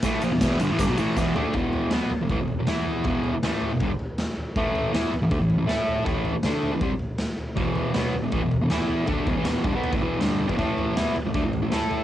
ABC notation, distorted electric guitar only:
X:1
M:4/4
L:1/16
Q:1/4=159
K:A
V:1 name="Distorted electric guitar" clef=bass
[A,,E,A,]2 [^A,,=F,] [E,,B,,] [E,,B,,E,]2 [=G,,D,] [=A,,E,] [G,,D,] [B,,^F,] [A,,E,A,]2 [E,,B,,E,]2 [D,A,D]2 | [E,,B,,E,]4 [B,,F,B,]2 z [E,,B,,] [A,,E,] [E,,B,,]2 [E,,B,,] [E,B,E]4 | [E,,B,,E,]3 z [A,,E,A,]3 [E,,B,,] [=G,,D,] z6 z | [A,,E,A,]4 [E,B,E]2 z [A,,E,] [D,A,] [A,,E,]2 [A,,E,] [A,EA]4 |
[A,,E,A,]3 z [D,A,D]3 [A,,E,] [=C,=G,] z6 z | [E,,B,,E,]4 [B,,F,B,]2 z [E,,B,,] [A,,E,] [E,,B,,]2 [E,,B,,] [E,B,E]4 | [D,A,D]2 [E,,B,,] [A,,E,] [E,,B,,E,]2 [=G,,D,] [B,,F,B,]2 [A,,E,] [E,,B,,E,]2 [G,,D,=G,]3 [E,,B,,] | [A,,E,A,]4 [E,B,E]2 z [A,,E,] [D,A,] [A,,E,]2 [A,,E,] [A,EA]4 |]